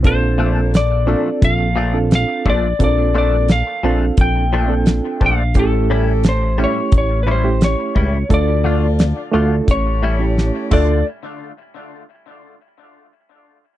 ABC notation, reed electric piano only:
X:1
M:4/4
L:1/16
Q:1/4=87
K:Bblyd
V:1 name="Reed electric piano"
[CDFA]4 z2 [CDFA]3 z2 [CDFA]3 z2 | [CDFA]4 z2 [CDFA]3 z2 [CDFA]3 z2 | [A,^CEG]4 z2 [A,CEG]3 z2 [A,CEG]3 z2 | [A,DFA]4 z2 [A,DFA]2 z3 [A,^CEG]3 [A,DFA]2 |
z16 |]